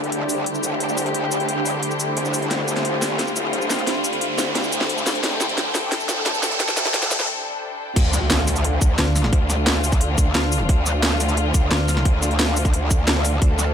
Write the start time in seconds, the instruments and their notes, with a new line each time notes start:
Already playing: wobble bass D2, string section D3 A3 E4 G4, ambient pad D4 G4 C5, riser
0.04 closed hi-hat
0.12 wobble bass D2, closed hi-hat
0.29 wobble bass C2, open hi-hat, cabasa
0.46 closed hi-hat
0.55 cabasa
0.63 wobble bass F1, closed hi-hat, cabasa
0.80 closed hi-hat
0.89 cabasa
0.97 open hi-hat, cabasa
1.06 closed hi-hat
1.14 wobble bass D2, closed hi-hat
1.32 closed hi-hat, cabasa
1.40 closed hi-hat
1.49 wobble bass E1, closed hi-hat
1.66 open hi-hat, cabasa
1.83 closed hi-hat
1.91 cabasa
2.00 closed hi-hat, cabasa
2.17 wobble bass C2, closed hi-hat
2.25 cabasa
2.34 open hi-hat, cabasa
2.42 closed hi-hat
2.51 wobble bass D2, string section F4, snare, closed hi-hat
2.68 closed hi-hat, cabasa
2.76 snare, closed hi-hat
2.85 wobble bass D2, closed hi-hat
3.02 wobble bass C2, snare, open hi-hat, cabasa
3.19 snare, closed hi-hat
3.28 cabasa
3.36 wobble bass F1, closed hi-hat, cabasa
3.53 closed hi-hat
3.62 cabasa
3.70 snare, open hi-hat, cabasa
3.79 closed hi-hat
3.87 ambient pad G5, snare, closed hi-hat
4.04 closed hi-hat, cabasa
4.13 closed hi-hat
4.21 closed hi-hat
4.38 wobble bass D2, snare, open hi-hat, cabasa
4.55 snare, closed hi-hat
4.64 cabasa
4.72 closed hi-hat, cabasa
4.81 snare
4.89 closed hi-hat
4.98 cabasa
5.07 snare, open hi-hat, cabasa
5.15 closed hi-hat
5.24 wobble bass D2, string section A4, snare, closed hi-hat
5.41 snare, closed hi-hat, cabasa
5.49 closed hi-hat
5.58 wobble bass D2, snare, closed hi-hat
5.75 wobble bass C2, snare, open hi-hat, cabasa
5.92 snare, closed hi-hat
6.00 cabasa
6.09 wobble bass F1, snare, closed hi-hat, cabasa
6.26 snare, closed hi-hat
6.34 cabasa
6.43 snare, open hi-hat, cabasa
6.51 closed hi-hat
6.60 snare, closed hi-hat
6.68 snare, cabasa
6.77 wobble bass D2, snare, closed hi-hat, cabasa
6.86 snare, closed hi-hat
6.94 snare, closed hi-hat
7.03 snare, cabasa
7.11 wobble bass D2, snare, open hi-hat, cabasa
7.20 snare
7.28 swell
7.96 wobble bass D2, string section D3 A3 D4 F4, kick, closed hi-hat, crash, impact
8.13 snare, closed hi-hat, cabasa
8.30 snare, closed hi-hat
8.47 snare, open hi-hat, cabasa
8.56 ambient pad F5, closed hi-hat, cabasa
8.64 closed hi-hat
8.81 wobble bass D2, kick, closed hi-hat, cabasa
8.99 wobble bass D2, snare, closed hi-hat
9.16 snare, open hi-hat, cabasa
9.24 snare
9.33 wobble bass D2, kick, closed hi-hat
9.50 snare, closed hi-hat, cabasa
9.67 snare, closed hi-hat
9.84 open hi-hat, cabasa
9.92 kick, closed hi-hat, cabasa
10.01 closed hi-hat
10.18 wobble bass D2, kick, closed hi-hat, cabasa
10.35 wobble bass D2, snare, closed hi-hat
10.52 open hi-hat, cabasa
10.69 wobble bass D2, kick, closed hi-hat
10.86 snare, closed hi-hat, cabasa
11.03 snare, closed hi-hat
11.20 snare, open hi-hat, cabasa
11.29 closed hi-hat, cabasa
11.37 closed hi-hat
11.54 wobble bass D2, kick, closed hi-hat, cabasa
11.71 wobble bass D2, snare, closed hi-hat
11.88 snare, open hi-hat, cabasa
11.97 snare
12.05 wobble bass D2, kick, closed hi-hat
12.22 snare, closed hi-hat, cabasa
12.31 closed hi-hat
12.39 snare, closed hi-hat
12.57 open hi-hat, cabasa
12.65 kick, closed hi-hat, cabasa
12.74 closed hi-hat
12.91 kick, closed hi-hat, cabasa
13.08 snare, closed hi-hat
13.25 open hi-hat, cabasa
13.42 wobble bass D2, string section A4, kick, closed hi-hat
13.59 snare, closed hi-hat, cabasa